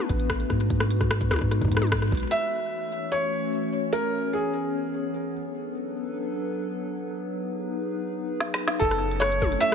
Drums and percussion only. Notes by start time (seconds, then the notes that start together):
0.09 kick, closed hi-hat
0.20 closed hi-hat
0.30 kick, cross-stick, closed hi-hat
0.40 closed hi-hat
0.50 kick, cross-stick, closed hi-hat
0.60 closed hi-hat
0.70 kick, closed hi-hat
0.80 cross-stick, closed hi-hat
0.91 closed hi-hat
1.01 kick, cross-stick, closed hi-hat
1.11 cross-stick, closed hi-hat
1.21 kick, closed hi-hat
1.31 cross-stick, closed hi-hat, high tom
1.33 cross-stick
1.36 cross-stick, closed hi-hat
1.39 kick, cross-stick
1.51 cross-stick, closed hi-hat
1.61 kick, closed hi-hat
1.65 kick
1.68 kick
1.72 kick, closed hi-hat
1.75 kick, cross-stick
1.78 kick, closed hi-hat, high tom
1.87 closed hi-hat
1.92 kick, cross-stick, closed hi-hat
1.97 closed hi-hat
2.02 cross-stick, closed hi-hat
2.12 kick, closed hi-hat
2.15 closed hi-hat
2.17 closed hi-hat
2.20 closed hi-hat
2.27 closed hi-hat
8.40 snare
8.54 snare
8.68 snare
8.81 kick, closed hi-hat
8.91 cross-stick, closed hi-hat
9.11 closed hi-hat
9.22 cross-stick, closed hi-hat
9.32 closed hi-hat, cabasa
9.42 kick, high tom
9.52 closed hi-hat
9.62 closed hi-hat